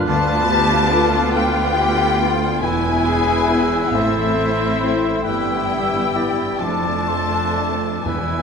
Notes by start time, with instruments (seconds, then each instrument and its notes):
Already playing: harp G2 D4 F4 A#4, oboe B4
0.07 cello section D2, double bass section D2, harp D3, viola section B3 F4, clarinet F4, violin section A5, flute D6
0.29 harp A3
0.50 harp B3, clarinet G4
0.71 harp F4
0.92 french horn section B3 F4, clarinet A4, harp B4
1.13 harp F4
1.34 clarinet A4, harp B4, violin section G5
1.57 harp B3
1.78 harp A3, clarinet G4
1.99 harp B3
2.21 harp A3, french horn section B3 F4, clarinet F4
2.42 harp B3
2.61 double bass section E1, cello section E2, harp E3, viola section B3 E4, clarinet E4, oboe B4, violin section G#5, flute E6
2.84 harp B3
3.05 harp E4, clarinet G#4
3.28 harp B4
3.49 french horn section B3 E4, harp E4, clarinet G#4
3.72 harp B4
3.93 double bass section A1, harp A2, cello section A2, viola section C4 E4, clarinet A4, oboe C5, violin section E5
4.17 harp E3
4.38 harp C4
4.60 harp E4
4.82 french horn section C4 E4, harp A4
5.03 harp E4
5.24 double bass section G1, cello section G2, harp G2, viola section B3 E4, clarinet G4, oboe B4, violin section G5, flute E6
5.48 harp G3
5.69 harp B3, oboe E5
5.93 harp E4
6.15 french horn section B3 E4, harp B4, oboe D5
6.38 harp E4
6.59 double bass section F1, harp F2, cello section F2, viola section A3 D4, clarinet F4, oboe A4, violin section A5, flute D6
6.84 harp F3
7.08 harp A3, flute C6
7.32 harp D4
7.56 french horn section A3 D4, harp D5, flute D6
7.81 harp D4
8.04 double bass section E1, timpani E2, cello section E2, harp E2, viola section B3 E4, clarinet E4, oboe B4, violin section G#5, flute E6
8.31 harp B2